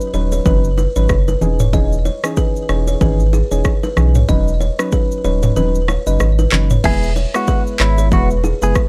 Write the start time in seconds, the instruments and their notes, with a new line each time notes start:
Already playing: synth keys F#3 C#4 D#4 B4
0.01 shaker
0.13 sub bass D#1, synth keys F#3 C#4 D#4 B4, kalimba C#5, high bongo, shaker
0.32 kalimba C#5, high bongo, shaker
0.45 sub bass F#1, synth keys F#3 C#4 D#4 B4, kalimba B4, kick, low conga, shaker
0.64 shaker
0.78 kalimba B4, low bongo, shaker
0.96 sub bass G#1, synth keys F#3 C#4 D#4 B4, kalimba C#5, shaker
1.09 sub bass F#1, kick, cross-stick, high bongo, shaker
1.28 kalimba B4, low bongo, shaker
1.41 sub bass E1, synth keys E3 C#4 D#4 G#4, low conga, shaker
1.60 kalimba C#5, mid tom, shaker
1.73 synth keys E3 C#4 D#4 G#4, kalimba D#5, kick, low conga, shaker
1.92 shaker
2.05 kalimba C#5, low bongo, shaker
2.23 synth keys E3 C#4 D#4 G#4, cross-stick, shaker
2.37 kalimba B4, kick, high bongo, shaker
2.56 shaker
2.69 sub bass E1, synth keys E3 C#4 D#4 G#4, kalimba C#5, cross-stick, high bongo, shaker
2.87 kalimba C#5, high bongo, shaker
3.01 sub bass G#1, synth keys E3 C#4 D#4 G#4, kalimba B4, kick, low conga, shaker
3.20 shaker
3.33 kalimba G#4, low bongo, shaker
3.51 sub bass E1, synth keys E3 C#4 D#4 G#4, kalimba C#5, shaker
3.64 kick, cross-stick, high bongo, shaker
3.83 kalimba B4, low bongo, shaker
3.96 sub bass B1, synth keys E3 C#4 D#4 G#4, cross-stick, low conga, shaker
4.15 kalimba C#5, mid tom, shaker
4.28 sub bass E1, synth keys F#3 C#4 D#4 B4, kalimba D#5, kick, low conga, shaker
4.48 shaker
4.60 kalimba C#5, low bongo, shaker
4.79 synth keys F#3 C#4 D#4 B4, cross-stick, shaker
4.92 kalimba B4, kick, high bongo, shaker
5.12 shaker
5.24 sub bass D#1, synth keys F#3 C#4 D#4 B4, kalimba C#5, high bongo, shaker
5.43 kalimba C#5, mid tom, high bongo, shaker
5.56 sub bass D#1, synth keys F#3 C#4 D#4 B4, kalimba B4, low conga, shaker
5.75 shaker
5.88 kalimba C#5, cross-stick, low bongo, shaker
6.06 sub bass F#1, synth keys F#3 C#4 D#4 B4, kalimba D#5, shaker
6.20 sub bass G#1, cross-stick, high bongo, shaker
6.39 kalimba B4, low bongo, shaker
6.52 sub bass F#1, synth keys F#3 C#4 D#4 B4, cross-stick, clap, low conga, shaker
6.70 kalimba C#5, mid tom, shaker
6.84 sub bass E1, synth keys G#3 B3 E4 B4, clean electric guitar G#4, kalimba E5, kick, crash, low conga, shaker
7.03 shaker
7.16 kalimba C#5, low bongo, shaker
7.34 synth keys G#3 B3 E4 B4, clean electric guitar F#4, cross-stick, shaker
7.47 kalimba B4, kick, high bongo, shaker
7.67 shaker
7.79 sub bass G#1, synth keys G#3 B3 E4 B4, clean electric guitar E4, kalimba C#5, cross-stick, clap, shaker
7.98 kalimba C#5, high bongo, shaker
8.11 sub bass E1, synth keys G#3 B3 E4 B4, clean electric guitar F#4, kalimba B4, kick, low conga, shaker
8.30 shaker
8.44 kalimba G#4, low bongo, shaker
8.62 sub bass F#1, synth keys G#3 B3 E4 B4, clean electric guitar G#4, kalimba B4, shaker
8.75 kick, cross-stick, high bongo, shaker